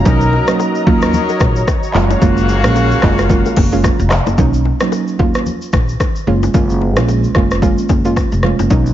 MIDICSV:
0, 0, Header, 1, 6, 480
1, 0, Start_track
1, 0, Key_signature, 6, "major"
1, 0, Tempo, 540541
1, 50, Time_signature, 4, 2, 24, 8
1, 7934, End_track
2, 0, Start_track
2, 0, Title_t, "Analog synth pad"
2, 0, Program_c, 0, 89
2, 0, Note_on_c, 0, 54, 86
2, 0, Note_on_c, 0, 82, 90
2, 52, Note_on_c, 0, 70, 71
2, 54, Note_on_c, 0, 75, 75
2, 764, Note_off_c, 0, 70, 0
2, 770, Note_on_c, 0, 73, 77
2, 1715, Note_off_c, 0, 75, 0
2, 1732, Note_on_c, 0, 77, 80
2, 3854, Note_off_c, 0, 54, 0
2, 3855, Note_off_c, 0, 82, 0
2, 3859, Note_off_c, 0, 73, 0
2, 3869, Note_off_c, 0, 77, 0
2, 7934, End_track
3, 0, Start_track
3, 0, Title_t, "Horn section"
3, 0, Program_c, 1, 61
3, 48, Note_on_c, 1, 54, 82
3, 48, Note_on_c, 1, 63, 83
3, 48, Note_on_c, 1, 70, 96
3, 519, Note_off_c, 1, 54, 0
3, 519, Note_off_c, 1, 63, 0
3, 519, Note_off_c, 1, 70, 0
3, 768, Note_on_c, 1, 63, 84
3, 769, Note_on_c, 1, 70, 97
3, 770, Note_on_c, 1, 54, 84
3, 1474, Note_off_c, 1, 63, 0
3, 1475, Note_off_c, 1, 54, 0
3, 1475, Note_off_c, 1, 70, 0
3, 1730, Note_on_c, 1, 49, 96
3, 1731, Note_on_c, 1, 66, 101
3, 1732, Note_on_c, 1, 58, 93
3, 3614, Note_off_c, 1, 49, 0
3, 3615, Note_off_c, 1, 58, 0
3, 3615, Note_off_c, 1, 66, 0
3, 7934, End_track
4, 0, Start_track
4, 0, Title_t, "Synth pluck"
4, 0, Program_c, 2, 84
4, 47, Note_on_c, 2, 54, 95
4, 48, Note_on_c, 2, 58, 86
4, 50, Note_on_c, 2, 61, 86
4, 53, Note_on_c, 2, 63, 103
4, 222, Note_off_c, 2, 54, 0
4, 222, Note_off_c, 2, 58, 0
4, 223, Note_off_c, 2, 61, 0
4, 224, Note_off_c, 2, 63, 0
4, 427, Note_on_c, 2, 54, 81
4, 428, Note_on_c, 2, 58, 73
4, 431, Note_on_c, 2, 61, 71
4, 431, Note_on_c, 2, 63, 92
4, 744, Note_off_c, 2, 54, 0
4, 745, Note_off_c, 2, 58, 0
4, 746, Note_off_c, 2, 61, 0
4, 747, Note_off_c, 2, 63, 0
4, 768, Note_on_c, 2, 54, 78
4, 769, Note_on_c, 2, 58, 68
4, 772, Note_on_c, 2, 61, 75
4, 772, Note_on_c, 2, 65, 88
4, 993, Note_off_c, 2, 54, 0
4, 993, Note_off_c, 2, 58, 0
4, 994, Note_off_c, 2, 61, 0
4, 995, Note_off_c, 2, 65, 0
4, 1727, Note_on_c, 2, 56, 77
4, 1730, Note_on_c, 2, 58, 72
4, 1731, Note_on_c, 2, 61, 73
4, 1732, Note_on_c, 2, 65, 85
4, 1902, Note_off_c, 2, 56, 0
4, 1903, Note_off_c, 2, 58, 0
4, 1903, Note_off_c, 2, 61, 0
4, 1904, Note_off_c, 2, 65, 0
4, 1968, Note_on_c, 2, 56, 94
4, 1969, Note_on_c, 2, 58, 89
4, 1972, Note_on_c, 2, 61, 90
4, 1972, Note_on_c, 2, 65, 108
4, 2142, Note_off_c, 2, 56, 0
4, 2143, Note_off_c, 2, 58, 0
4, 2144, Note_off_c, 2, 61, 0
4, 2144, Note_off_c, 2, 65, 0
4, 2347, Note_on_c, 2, 56, 77
4, 2349, Note_on_c, 2, 58, 76
4, 2351, Note_on_c, 2, 61, 76
4, 2352, Note_on_c, 2, 77, 93
4, 2665, Note_off_c, 2, 56, 0
4, 2666, Note_off_c, 2, 58, 0
4, 2666, Note_off_c, 2, 61, 0
4, 2667, Note_off_c, 2, 77, 0
4, 2688, Note_on_c, 2, 56, 80
4, 2689, Note_on_c, 2, 58, 69
4, 2691, Note_on_c, 2, 61, 75
4, 2693, Note_on_c, 2, 65, 90
4, 2912, Note_off_c, 2, 56, 0
4, 2913, Note_off_c, 2, 58, 0
4, 2914, Note_off_c, 2, 61, 0
4, 2915, Note_off_c, 2, 65, 0
4, 2928, Note_on_c, 2, 56, 94
4, 2929, Note_on_c, 2, 58, 89
4, 2930, Note_on_c, 2, 61, 87
4, 2933, Note_on_c, 2, 65, 104
4, 3102, Note_off_c, 2, 56, 0
4, 3102, Note_off_c, 2, 58, 0
4, 3103, Note_off_c, 2, 61, 0
4, 3104, Note_off_c, 2, 65, 0
4, 3305, Note_on_c, 2, 56, 80
4, 3308, Note_on_c, 2, 58, 74
4, 3309, Note_on_c, 2, 61, 72
4, 3311, Note_on_c, 2, 65, 86
4, 3455, Note_off_c, 2, 56, 0
4, 3456, Note_off_c, 2, 58, 0
4, 3457, Note_off_c, 2, 61, 0
4, 3458, Note_off_c, 2, 65, 0
4, 3889, Note_on_c, 2, 54, 93
4, 3891, Note_on_c, 2, 58, 85
4, 3893, Note_on_c, 2, 61, 87
4, 3894, Note_on_c, 2, 63, 101
4, 4063, Note_off_c, 2, 54, 0
4, 4064, Note_off_c, 2, 58, 0
4, 4065, Note_off_c, 2, 61, 0
4, 4065, Note_off_c, 2, 63, 0
4, 4269, Note_on_c, 2, 54, 80
4, 4271, Note_on_c, 2, 58, 71
4, 4271, Note_on_c, 2, 61, 73
4, 4274, Note_on_c, 2, 63, 84
4, 4585, Note_off_c, 2, 54, 0
4, 4586, Note_off_c, 2, 58, 0
4, 4586, Note_off_c, 2, 61, 0
4, 4588, Note_off_c, 2, 63, 0
4, 4608, Note_on_c, 2, 54, 75
4, 4609, Note_on_c, 2, 58, 69
4, 4612, Note_on_c, 2, 61, 70
4, 4614, Note_on_c, 2, 65, 85
4, 4832, Note_off_c, 2, 54, 0
4, 4833, Note_off_c, 2, 58, 0
4, 4834, Note_off_c, 2, 61, 0
4, 4836, Note_off_c, 2, 65, 0
4, 5568, Note_on_c, 2, 56, 77
4, 5570, Note_on_c, 2, 58, 72
4, 5571, Note_on_c, 2, 61, 72
4, 5574, Note_on_c, 2, 65, 87
4, 5742, Note_off_c, 2, 56, 0
4, 5743, Note_off_c, 2, 58, 0
4, 5744, Note_off_c, 2, 61, 0
4, 5745, Note_off_c, 2, 65, 0
4, 5808, Note_on_c, 2, 56, 94
4, 5810, Note_on_c, 2, 58, 84
4, 5812, Note_on_c, 2, 61, 83
4, 5813, Note_on_c, 2, 65, 101
4, 5982, Note_off_c, 2, 56, 0
4, 5983, Note_off_c, 2, 58, 0
4, 5984, Note_off_c, 2, 61, 0
4, 5985, Note_off_c, 2, 65, 0
4, 6186, Note_on_c, 2, 56, 78
4, 6189, Note_on_c, 2, 58, 73
4, 6190, Note_on_c, 2, 61, 74
4, 6192, Note_on_c, 2, 65, 82
4, 6504, Note_off_c, 2, 56, 0
4, 6505, Note_off_c, 2, 58, 0
4, 6506, Note_off_c, 2, 61, 0
4, 6507, Note_off_c, 2, 65, 0
4, 6527, Note_on_c, 2, 56, 75
4, 6530, Note_on_c, 2, 58, 69
4, 6531, Note_on_c, 2, 61, 69
4, 6533, Note_on_c, 2, 65, 87
4, 6752, Note_off_c, 2, 56, 0
4, 6754, Note_off_c, 2, 58, 0
4, 6754, Note_off_c, 2, 61, 0
4, 6755, Note_off_c, 2, 65, 0
4, 6767, Note_on_c, 2, 56, 89
4, 6769, Note_on_c, 2, 58, 84
4, 6770, Note_on_c, 2, 61, 87
4, 6772, Note_on_c, 2, 65, 105
4, 6941, Note_off_c, 2, 56, 0
4, 6942, Note_off_c, 2, 58, 0
4, 6943, Note_off_c, 2, 61, 0
4, 6944, Note_off_c, 2, 65, 0
4, 7147, Note_on_c, 2, 56, 77
4, 7149, Note_on_c, 2, 58, 70
4, 7150, Note_on_c, 2, 61, 72
4, 7153, Note_on_c, 2, 65, 89
4, 7296, Note_off_c, 2, 56, 0
4, 7297, Note_off_c, 2, 58, 0
4, 7297, Note_off_c, 2, 61, 0
4, 7299, Note_off_c, 2, 65, 0
4, 7488, Note_on_c, 2, 56, 80
4, 7490, Note_on_c, 2, 58, 72
4, 7491, Note_on_c, 2, 61, 72
4, 7493, Note_on_c, 2, 65, 89
4, 7662, Note_off_c, 2, 56, 0
4, 7663, Note_off_c, 2, 58, 0
4, 7663, Note_off_c, 2, 61, 0
4, 7665, Note_off_c, 2, 65, 0
4, 7727, Note_on_c, 2, 54, 91
4, 7728, Note_on_c, 2, 58, 82
4, 7730, Note_on_c, 2, 61, 83
4, 7732, Note_on_c, 2, 63, 99
4, 7902, Note_off_c, 2, 54, 0
4, 7902, Note_off_c, 2, 58, 0
4, 7903, Note_off_c, 2, 61, 0
4, 7904, Note_off_c, 2, 63, 0
4, 7934, End_track
5, 0, Start_track
5, 0, Title_t, "Upright bass"
5, 0, Program_c, 3, 32
5, 49, Note_on_c, 3, 35, 108
5, 318, Note_off_c, 3, 35, 0
5, 770, Note_on_c, 3, 39, 107
5, 1039, Note_off_c, 3, 39, 0
5, 1248, Note_on_c, 3, 34, 95
5, 1419, Note_off_c, 3, 34, 0
5, 1728, Note_on_c, 3, 30, 93
5, 1898, Note_off_c, 3, 30, 0
5, 1969, Note_on_c, 3, 30, 108
5, 2347, Note_off_c, 3, 30, 0
5, 2347, Note_on_c, 3, 34, 92
5, 2589, Note_off_c, 3, 34, 0
5, 2690, Note_on_c, 3, 30, 91
5, 3030, Note_off_c, 3, 30, 0
5, 3168, Note_on_c, 3, 30, 92
5, 3438, Note_off_c, 3, 30, 0
5, 3546, Note_on_c, 3, 29, 96
5, 3717, Note_off_c, 3, 29, 0
5, 3785, Note_on_c, 3, 30, 97
5, 3858, Note_off_c, 3, 30, 0
5, 3890, Note_on_c, 3, 35, 101
5, 4159, Note_off_c, 3, 35, 0
5, 4611, Note_on_c, 3, 39, 99
5, 4880, Note_off_c, 3, 39, 0
5, 5089, Note_on_c, 3, 34, 86
5, 5259, Note_off_c, 3, 34, 0
5, 5569, Note_on_c, 3, 30, 96
5, 5739, Note_off_c, 3, 30, 0
5, 5809, Note_on_c, 3, 30, 97
5, 6188, Note_off_c, 3, 30, 0
5, 6188, Note_on_c, 3, 34, 92
5, 6430, Note_off_c, 3, 34, 0
5, 6532, Note_on_c, 3, 30, 87
5, 6872, Note_off_c, 3, 30, 0
5, 7010, Note_on_c, 3, 30, 88
5, 7279, Note_off_c, 3, 30, 0
5, 7389, Note_on_c, 3, 29, 93
5, 7559, Note_off_c, 3, 29, 0
5, 7629, Note_on_c, 3, 30, 91
5, 7700, Note_off_c, 3, 30, 0
5, 7730, Note_on_c, 3, 35, 101
5, 7934, Note_off_c, 3, 35, 0
5, 7934, End_track
6, 0, Start_track
6, 0, Title_t, "Drums"
6, 48, Note_on_c, 9, 82, 81
6, 49, Note_on_c, 9, 36, 117
6, 51, Note_on_c, 9, 64, 88
6, 137, Note_off_c, 9, 36, 0
6, 137, Note_off_c, 9, 82, 0
6, 140, Note_off_c, 9, 64, 0
6, 186, Note_on_c, 9, 82, 50
6, 275, Note_off_c, 9, 82, 0
6, 292, Note_on_c, 9, 61, 55
6, 381, Note_off_c, 9, 61, 0
6, 423, Note_on_c, 9, 82, 57
6, 424, Note_on_c, 9, 37, 107
6, 511, Note_off_c, 9, 82, 0
6, 513, Note_off_c, 9, 37, 0
6, 529, Note_on_c, 9, 60, 80
6, 532, Note_on_c, 9, 82, 80
6, 618, Note_off_c, 9, 60, 0
6, 621, Note_off_c, 9, 82, 0
6, 667, Note_on_c, 9, 82, 41
6, 756, Note_off_c, 9, 82, 0
6, 771, Note_on_c, 9, 36, 89
6, 859, Note_off_c, 9, 36, 0
6, 905, Note_on_c, 9, 82, 48
6, 910, Note_on_c, 9, 37, 86
6, 994, Note_off_c, 9, 82, 0
6, 999, Note_off_c, 9, 37, 0
6, 1009, Note_on_c, 9, 64, 83
6, 1010, Note_on_c, 9, 82, 73
6, 1098, Note_off_c, 9, 64, 0
6, 1099, Note_off_c, 9, 82, 0
6, 1147, Note_on_c, 9, 82, 57
6, 1152, Note_on_c, 9, 60, 56
6, 1236, Note_off_c, 9, 82, 0
6, 1241, Note_off_c, 9, 60, 0
6, 1243, Note_on_c, 9, 82, 64
6, 1247, Note_on_c, 9, 36, 101
6, 1251, Note_on_c, 9, 37, 99
6, 1253, Note_on_c, 9, 61, 77
6, 1332, Note_off_c, 9, 82, 0
6, 1336, Note_off_c, 9, 36, 0
6, 1340, Note_off_c, 9, 37, 0
6, 1342, Note_off_c, 9, 61, 0
6, 1385, Note_on_c, 9, 82, 51
6, 1474, Note_off_c, 9, 82, 0
6, 1488, Note_on_c, 9, 36, 89
6, 1490, Note_on_c, 9, 37, 91
6, 1492, Note_on_c, 9, 82, 91
6, 1494, Note_on_c, 9, 60, 88
6, 1577, Note_off_c, 9, 36, 0
6, 1579, Note_off_c, 9, 37, 0
6, 1581, Note_off_c, 9, 82, 0
6, 1582, Note_off_c, 9, 60, 0
6, 1626, Note_on_c, 9, 82, 54
6, 1715, Note_off_c, 9, 82, 0
6, 1723, Note_on_c, 9, 39, 89
6, 1729, Note_on_c, 9, 64, 81
6, 1812, Note_off_c, 9, 39, 0
6, 1818, Note_off_c, 9, 64, 0
6, 1869, Note_on_c, 9, 61, 80
6, 1869, Note_on_c, 9, 82, 55
6, 1958, Note_off_c, 9, 61, 0
6, 1958, Note_off_c, 9, 82, 0
6, 1968, Note_on_c, 9, 82, 85
6, 1969, Note_on_c, 9, 36, 119
6, 1972, Note_on_c, 9, 64, 86
6, 2057, Note_off_c, 9, 36, 0
6, 2057, Note_off_c, 9, 82, 0
6, 2061, Note_off_c, 9, 64, 0
6, 2107, Note_on_c, 9, 82, 50
6, 2196, Note_off_c, 9, 82, 0
6, 2209, Note_on_c, 9, 82, 65
6, 2212, Note_on_c, 9, 61, 56
6, 2298, Note_off_c, 9, 82, 0
6, 2301, Note_off_c, 9, 61, 0
6, 2344, Note_on_c, 9, 82, 59
6, 2345, Note_on_c, 9, 37, 114
6, 2432, Note_off_c, 9, 82, 0
6, 2434, Note_off_c, 9, 37, 0
6, 2448, Note_on_c, 9, 60, 83
6, 2452, Note_on_c, 9, 82, 83
6, 2537, Note_off_c, 9, 60, 0
6, 2540, Note_off_c, 9, 82, 0
6, 2587, Note_on_c, 9, 82, 43
6, 2676, Note_off_c, 9, 82, 0
6, 2684, Note_on_c, 9, 37, 94
6, 2684, Note_on_c, 9, 39, 91
6, 2691, Note_on_c, 9, 36, 92
6, 2772, Note_off_c, 9, 37, 0
6, 2772, Note_off_c, 9, 39, 0
6, 2780, Note_off_c, 9, 36, 0
6, 2827, Note_on_c, 9, 82, 46
6, 2832, Note_on_c, 9, 37, 87
6, 2916, Note_off_c, 9, 82, 0
6, 2921, Note_off_c, 9, 37, 0
6, 2926, Note_on_c, 9, 36, 92
6, 2930, Note_on_c, 9, 64, 85
6, 2932, Note_on_c, 9, 82, 74
6, 3015, Note_off_c, 9, 36, 0
6, 3019, Note_off_c, 9, 64, 0
6, 3021, Note_off_c, 9, 82, 0
6, 3069, Note_on_c, 9, 82, 54
6, 3073, Note_on_c, 9, 60, 56
6, 3158, Note_off_c, 9, 82, 0
6, 3162, Note_off_c, 9, 60, 0
6, 3165, Note_on_c, 9, 46, 65
6, 3169, Note_on_c, 9, 36, 98
6, 3174, Note_on_c, 9, 61, 83
6, 3254, Note_off_c, 9, 46, 0
6, 3257, Note_off_c, 9, 36, 0
6, 3263, Note_off_c, 9, 61, 0
6, 3307, Note_on_c, 9, 82, 51
6, 3396, Note_off_c, 9, 82, 0
6, 3409, Note_on_c, 9, 36, 86
6, 3412, Note_on_c, 9, 37, 88
6, 3414, Note_on_c, 9, 60, 88
6, 3414, Note_on_c, 9, 82, 89
6, 3498, Note_off_c, 9, 36, 0
6, 3501, Note_off_c, 9, 37, 0
6, 3503, Note_off_c, 9, 60, 0
6, 3503, Note_off_c, 9, 82, 0
6, 3549, Note_on_c, 9, 82, 54
6, 3638, Note_off_c, 9, 82, 0
6, 3646, Note_on_c, 9, 37, 91
6, 3646, Note_on_c, 9, 39, 92
6, 3650, Note_on_c, 9, 82, 59
6, 3651, Note_on_c, 9, 64, 80
6, 3735, Note_off_c, 9, 37, 0
6, 3735, Note_off_c, 9, 39, 0
6, 3739, Note_off_c, 9, 82, 0
6, 3740, Note_off_c, 9, 64, 0
6, 3790, Note_on_c, 9, 61, 82
6, 3792, Note_on_c, 9, 82, 58
6, 3879, Note_off_c, 9, 61, 0
6, 3881, Note_off_c, 9, 82, 0
6, 3889, Note_on_c, 9, 36, 107
6, 3890, Note_on_c, 9, 82, 78
6, 3893, Note_on_c, 9, 64, 84
6, 3978, Note_off_c, 9, 36, 0
6, 3979, Note_off_c, 9, 82, 0
6, 3982, Note_off_c, 9, 64, 0
6, 4028, Note_on_c, 9, 82, 49
6, 4117, Note_off_c, 9, 82, 0
6, 4132, Note_on_c, 9, 61, 54
6, 4221, Note_off_c, 9, 61, 0
6, 4266, Note_on_c, 9, 82, 54
6, 4267, Note_on_c, 9, 37, 107
6, 4275, Note_on_c, 9, 61, 78
6, 4354, Note_off_c, 9, 82, 0
6, 4356, Note_off_c, 9, 37, 0
6, 4364, Note_off_c, 9, 61, 0
6, 4369, Note_on_c, 9, 60, 78
6, 4373, Note_on_c, 9, 82, 81
6, 4458, Note_off_c, 9, 60, 0
6, 4462, Note_off_c, 9, 82, 0
6, 4508, Note_on_c, 9, 82, 41
6, 4597, Note_off_c, 9, 82, 0
6, 4612, Note_on_c, 9, 36, 89
6, 4701, Note_off_c, 9, 36, 0
6, 4747, Note_on_c, 9, 82, 48
6, 4752, Note_on_c, 9, 37, 85
6, 4835, Note_off_c, 9, 82, 0
6, 4841, Note_off_c, 9, 37, 0
6, 4851, Note_on_c, 9, 64, 77
6, 4852, Note_on_c, 9, 82, 73
6, 4939, Note_off_c, 9, 64, 0
6, 4941, Note_off_c, 9, 82, 0
6, 4988, Note_on_c, 9, 82, 56
6, 5077, Note_off_c, 9, 82, 0
6, 5085, Note_on_c, 9, 82, 61
6, 5089, Note_on_c, 9, 36, 93
6, 5092, Note_on_c, 9, 37, 96
6, 5094, Note_on_c, 9, 61, 80
6, 5174, Note_off_c, 9, 82, 0
6, 5177, Note_off_c, 9, 36, 0
6, 5181, Note_off_c, 9, 37, 0
6, 5183, Note_off_c, 9, 61, 0
6, 5227, Note_on_c, 9, 82, 49
6, 5315, Note_off_c, 9, 82, 0
6, 5329, Note_on_c, 9, 36, 87
6, 5332, Note_on_c, 9, 37, 88
6, 5333, Note_on_c, 9, 60, 85
6, 5334, Note_on_c, 9, 82, 88
6, 5418, Note_off_c, 9, 36, 0
6, 5421, Note_off_c, 9, 37, 0
6, 5422, Note_off_c, 9, 60, 0
6, 5422, Note_off_c, 9, 82, 0
6, 5467, Note_on_c, 9, 82, 52
6, 5556, Note_off_c, 9, 82, 0
6, 5571, Note_on_c, 9, 64, 72
6, 5660, Note_off_c, 9, 64, 0
6, 5710, Note_on_c, 9, 61, 78
6, 5710, Note_on_c, 9, 82, 54
6, 5799, Note_off_c, 9, 61, 0
6, 5799, Note_off_c, 9, 82, 0
6, 5810, Note_on_c, 9, 36, 107
6, 5810, Note_on_c, 9, 82, 84
6, 5814, Note_on_c, 9, 64, 84
6, 5898, Note_off_c, 9, 36, 0
6, 5899, Note_off_c, 9, 82, 0
6, 5902, Note_off_c, 9, 64, 0
6, 5948, Note_on_c, 9, 82, 51
6, 6036, Note_off_c, 9, 82, 0
6, 6052, Note_on_c, 9, 61, 52
6, 6141, Note_off_c, 9, 61, 0
6, 6185, Note_on_c, 9, 82, 55
6, 6186, Note_on_c, 9, 37, 108
6, 6196, Note_on_c, 9, 61, 81
6, 6274, Note_off_c, 9, 82, 0
6, 6275, Note_off_c, 9, 37, 0
6, 6284, Note_off_c, 9, 61, 0
6, 6291, Note_on_c, 9, 60, 76
6, 6293, Note_on_c, 9, 82, 75
6, 6380, Note_off_c, 9, 60, 0
6, 6382, Note_off_c, 9, 82, 0
6, 6428, Note_on_c, 9, 82, 41
6, 6516, Note_off_c, 9, 82, 0
6, 6525, Note_on_c, 9, 37, 90
6, 6532, Note_on_c, 9, 36, 91
6, 6613, Note_off_c, 9, 37, 0
6, 6621, Note_off_c, 9, 36, 0
6, 6668, Note_on_c, 9, 82, 47
6, 6674, Note_on_c, 9, 37, 82
6, 6757, Note_off_c, 9, 82, 0
6, 6763, Note_off_c, 9, 37, 0
6, 6768, Note_on_c, 9, 36, 87
6, 6771, Note_on_c, 9, 64, 81
6, 6774, Note_on_c, 9, 82, 72
6, 6857, Note_off_c, 9, 36, 0
6, 6860, Note_off_c, 9, 64, 0
6, 6863, Note_off_c, 9, 82, 0
6, 6910, Note_on_c, 9, 82, 54
6, 6999, Note_off_c, 9, 82, 0
6, 7007, Note_on_c, 9, 82, 62
6, 7010, Note_on_c, 9, 36, 94
6, 7014, Note_on_c, 9, 61, 76
6, 7096, Note_off_c, 9, 82, 0
6, 7099, Note_off_c, 9, 36, 0
6, 7103, Note_off_c, 9, 61, 0
6, 7149, Note_on_c, 9, 82, 50
6, 7237, Note_off_c, 9, 82, 0
6, 7250, Note_on_c, 9, 36, 85
6, 7253, Note_on_c, 9, 60, 87
6, 7255, Note_on_c, 9, 37, 86
6, 7256, Note_on_c, 9, 82, 85
6, 7339, Note_off_c, 9, 36, 0
6, 7342, Note_off_c, 9, 60, 0
6, 7344, Note_off_c, 9, 37, 0
6, 7345, Note_off_c, 9, 82, 0
6, 7389, Note_on_c, 9, 82, 53
6, 7478, Note_off_c, 9, 82, 0
6, 7485, Note_on_c, 9, 37, 90
6, 7491, Note_on_c, 9, 64, 79
6, 7574, Note_off_c, 9, 37, 0
6, 7580, Note_off_c, 9, 64, 0
6, 7630, Note_on_c, 9, 61, 77
6, 7632, Note_on_c, 9, 82, 55
6, 7719, Note_off_c, 9, 61, 0
6, 7721, Note_off_c, 9, 82, 0
6, 7730, Note_on_c, 9, 36, 111
6, 7730, Note_on_c, 9, 82, 79
6, 7733, Note_on_c, 9, 64, 84
6, 7819, Note_off_c, 9, 36, 0
6, 7819, Note_off_c, 9, 82, 0
6, 7821, Note_off_c, 9, 64, 0
6, 7869, Note_on_c, 9, 82, 48
6, 7934, Note_off_c, 9, 82, 0
6, 7934, End_track
0, 0, End_of_file